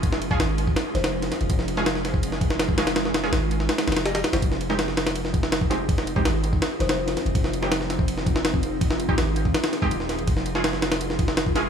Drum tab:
RD |x---x---x---x---x---x-x---x-x-x-|x---x---x---x---x---x---x---x-x-|x---x---x---x---x-x-xxx-x-x-x-x-|x---x---x---x-x-x---x---x---x---|
SD |--o-----o-------o---o-o---o-o---|--o---o-o-o-o-----o---o-o---o-o-|o-o-o-o-o-----o-o-o-ooo-o-o-o-o-|--o---o-o-o-o-o---o---o-o---o---|
BD |o-----o-------o-----------------|o-------------o-----o-----o-----|--------------------------------|o-------------------o-----o-----|

RD |x---x---x---x---x---x-x---x-x-x-|x---x---x---x---x---x---x---x---|x---x---x---x---x-x-x---x---x-x-|x---x---x---x-x-x---x---x---x---|
SD |--o-----o-------o---o-o---o-o---|--o---o-o-o-o-----o---o-o-------|--o-----o-------o-o-o-----o-o---|--o---o-o-o-o-o---o---o-o---o---|
BD |o-----o-------o-----------------|o-------------o-----o-----o-----|o-----o-------o-------o---------|o-------------------o-----o-----|